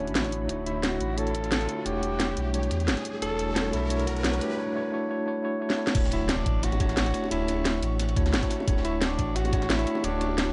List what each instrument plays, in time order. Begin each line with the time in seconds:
Already playing: tine electric piano D3 A3 D4 E4, tenor saxophone C#4, ambient pad F#4 E5 B5, riser
0.00 tine electric piano F#4 C#5
0.07 sub bass A1, closed hi-hat
0.15 snare, closed hi-hat
0.24 tine electric piano A3 D4 E4 F#4 C#5, kick, closed hi-hat
0.32 closed hi-hat
0.48 sub bass D1, tine electric piano A3 D4 E4 F#4 C#5, kick, closed hi-hat
0.66 tenor saxophone E4, closed hi-hat
0.83 tenor saxophone F#4, snare, closed hi-hat
1.00 sub bass A1, closed hi-hat
1.17 tine electric piano A3 D4 E4 F#4 C#5, tenor saxophone A4, closed hi-hat
1.27 closed hi-hat
1.34 kick, closed hi-hat
1.44 closed hi-hat
1.52 tenor saxophone A4, snare, closed hi-hat
1.61 closed hi-hat
1.69 closed hi-hat
1.85 sub bass E1, ambient pad G3, tine electric piano A3 D4 E4 C#5 F#5, tenor saxophone G4, closed hi-hat
2.03 closed hi-hat
2.20 snare, closed hi-hat
2.37 sub bass B1, closed hi-hat
2.53 tine electric piano A3 D4 E4 F#4 C#5, closed hi-hat
2.63 closed hi-hat
2.71 sub bass E2, kick, closed hi-hat
2.80 closed hi-hat
2.88 sub bass G1, snare, closed hi-hat
2.97 kick, closed hi-hat
3.05 closed hi-hat
3.21 sub bass E1, tine electric piano A3 D4 E4 F#4 C#5, tenor saxophone A4, kick, closed hi-hat
3.39 closed hi-hat
3.55 tine electric piano A3 D4 E4 F#4 C#5, snare, closed hi-hat
3.73 sub bass B1, tenor saxophone E4, closed hi-hat
3.89 tine electric piano A3 D4 E4 F#4 C#5, closed hi-hat
3.99 closed hi-hat
4.07 tenor saxophone F#4, kick, closed hi-hat
4.17 closed hi-hat
4.23 tine electric piano A3 D4 E4 F#4 C#5, snare, closed hi-hat
4.34 closed hi-hat
4.41 tenor saxophone G4, closed hi-hat
4.57 tine electric piano A3 D4 E4 F#4 C#5
4.75 tine electric piano A3 D4 E4 F#4 C#5
4.92 tine electric piano A3 D4 E4 F#4 C#5
5.09 tine electric piano A3 D4 E4 F#4 C#5
5.26 tine electric piano A3 D4 E4 F#4 C#5
5.42 tine electric piano A3 D4 E4 F#4 C#5
5.60 tine electric piano A3 D4 E4 F#4 C#5
5.70 snare
5.77 tine electric piano A3 D4 E4 F#4 C#5
5.87 snare
5.94 sub bass D1, tine electric piano A3 D4 E4 F#4 C#5, ambient pad F#4 E5 C#6, kick, closed hi-hat, crash, ride, impact
6.04 snare
6.11 tenor saxophone E4, closed hi-hat, ride
6.29 tenor saxophone D4, snare, closed hi-hat, ride
6.46 sub bass A1, kick, closed hi-hat, ride
6.63 tenor saxophone F#4, snare, closed hi-hat, ride
6.72 closed hi-hat, high bongo
6.79 tine electric piano A3 D4 E4 F#4 C#5, kick, closed hi-hat, ride
6.89 snare, closed hi-hat
6.97 tenor saxophone F#4, snare, closed hi-hat, ride
7.06 tine electric piano A3 D4 E4 F#4 C#5, closed hi-hat
7.14 open hi-hat, ride
7.24 high bongo
7.30 sub bass D1, tine electric piano A3 D4 E4 F#4 C#5, tenor saxophone E4, closed hi-hat, ride
7.48 closed hi-hat, ride, high bongo
7.65 snare, closed hi-hat, ride
7.82 sub bass A1, closed hi-hat, ride
7.99 snare, closed hi-hat, ride
8.09 closed hi-hat, ride
8.16 sub bass D2, tine electric piano A3 D4 E4 F#4 C#5, kick, closed hi-hat, ride
8.26 snare, closed hi-hat
8.33 sub bass F#1, snare, closed hi-hat, ride
8.42 tine electric piano A3 D4 E4 F#4 C#5, kick, closed hi-hat
8.50 snare, open hi-hat, ride
8.60 high bongo
8.67 sub bass D1, tine electric piano A3 D4 E4 F#4 C#5, kick, closed hi-hat, ride
8.77 snare
8.84 tenor saxophone E4, closed hi-hat, ride
9.01 tenor saxophone D4, snare, closed hi-hat, ride
9.19 sub bass A1, kick, closed hi-hat, ride
9.36 tenor saxophone F#4, snare, closed hi-hat, ride
9.45 closed hi-hat, high bongo
9.52 tine electric piano A3 D4 E4 F#4 C#5, kick, closed hi-hat, ride
9.62 snare, closed hi-hat
9.70 tenor saxophone E4, snare, closed hi-hat, ride
9.78 tine electric piano A3 D4 E4 F#4 C#5, closed hi-hat
9.87 open hi-hat, ride
9.95 high bongo
10.03 sub bass D1, tine electric piano A3 D4 E4 F#4 C#5, tenor saxophone D4, closed hi-hat, ride
10.21 closed hi-hat, ride, high bongo
10.38 snare, closed hi-hat, ride